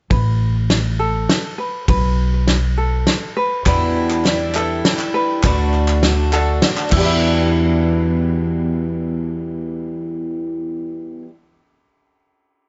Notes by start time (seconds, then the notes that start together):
0.10 A1 B4, kick, ride
0.70 snare, ride
0.99 A4
1.29 snare, ride
1.58 B4
1.88 B1 B4, kick, ride
2.47 snare, ride
2.77 A4
3.07 snare, ride
3.37 B4
3.66 E2 B2 E3 G3 D4 E4 B4, kick, clap, ride
4.10 clap
4.25 E3 G3 D4 E4, snare, clap, ride
4.55 E3 G3 D4 E4 A4, clap
4.85 E3 G3 D4 E4, snare, ride
4.99 clap
5.14 B4
5.43 D2 D3 A3 D4 F#4 B4, kick, clap, ride
5.74 clap
5.88 clap
6.03 D3 A3 D4 F#4, snare, clap, ride
6.33 A3 D4 F#4 A4, clap
6.62 D3 A3 D4 F#4, snare, ride
6.77 clap
6.89 E2 B2 E4, kick, clap, crash
6.95 E3 G3 G4
6.99 D4 E4 B4
7.05 E5